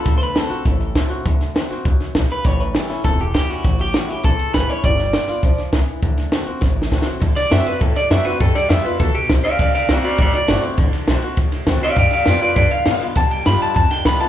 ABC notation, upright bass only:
X:1
M:4/4
L:1/8
Q:1/4=202
K:Dmix
V:1 name="Upright bass" clef=bass
D,,3 z A,,,3 z | D,,3 z C,, z B,,, z | A,,,3 z E,,,3 z | A,,,3 z B,,, z A,,, z |
G,,,3 z B,,, z C,, z | D,,3 z A,,,3 z | D,, z F,, z A,, z F,, z | G,, z =F,, z D,, z B,,, z |
D,, z C,, z A,,, z G,,, z | A,,, z B,,, z C,, z D,, z | G,, z =F,, z G,, z A,, z | B,, z G,, z =F,, z3 |]